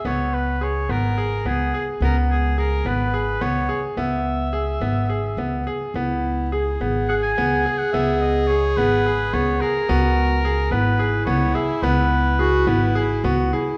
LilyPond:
<<
  \new Staff \with { instrumentName = "Oboe" } { \time 7/8 \key cis \dorian \tempo 4 = 107 cis''8 b'8 cis''8 ais'4 gis'8. r16 | ais'8 gis'8 ais'8 b'4 cis''8. r16 | e''2. r8 | r2 fis''16 gis''4 fis''16 |
e''8 dis''8 cis''8 b'4 cis''8 ais'8~ | ais'4. b'4 cis''8 e''8 | b'2~ b'8 r4 | }
  \new Staff \with { instrumentName = "Clarinet" } { \time 7/8 \key cis \dorian r2. r8 | r2. r8 | r2. r8 | e'4 gis'2~ gis'8~ |
gis'2.~ gis'8 | fis'4 r8 e'2~ | e'4 fis'8 e'4 fis'8 e'8 | }
  \new Staff \with { instrumentName = "Grand piano" } { \time 7/8 \key cis \dorian b4 gis'8 b8 gis'8 b8 gis'8 | b4 gis'8 b8 gis'8 b8 gis'8 | b4 gis'8 b8 gis'8 b8 gis'8 | b4 gis'8 b8 gis'8 b8 gis'8 |
b4 gis'8 b8 gis'8 b8 gis'8 | b4 gis'8 b8 gis'8 b8 gis'8 | b4 gis'8 b8 gis'8 b8 gis'8 | }
  \new Staff \with { instrumentName = "Upright bass" } { \clef bass \time 7/8 \key cis \dorian cis,4. gis,,4 cis,8 r8 | cis,4. gis,,4 cis,8 r8 | cis,4. gis,,4 cis,8 r8 | cis,4. gis,,4 cis,8 r8 |
cis,4. gis,,4 cis,8 r8 | cis,4. gis,,4 cis,8 r8 | cis,4. gis,,4 cis,8 r8 | }
>>